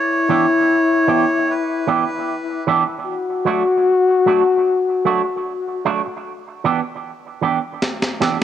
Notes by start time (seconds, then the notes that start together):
Already playing: E4 C#5
0.29 E3 B3 D4 G4
1.07 E3 B3 D4 G4
1.51 B4
1.87 E3 B3 D4 G4
2.67 E3 B3 D4 G4
2.87 muted clean electric guitar stroke
3.06 F#4
3.45 F#3 A3 D4 F#4
4.26 F#3 A3 D4 F#4
5.05 F#3 A3 D4 F#4
5.85 F#3 A3 D4 F#4
6.06 muted clean electric guitar stroke
6.64 E3 B3 D4 G4
7.42 E3 B3 D4 G4
7.82 snare
8.02 snare
8.20 E3 B3 D4 G4, snare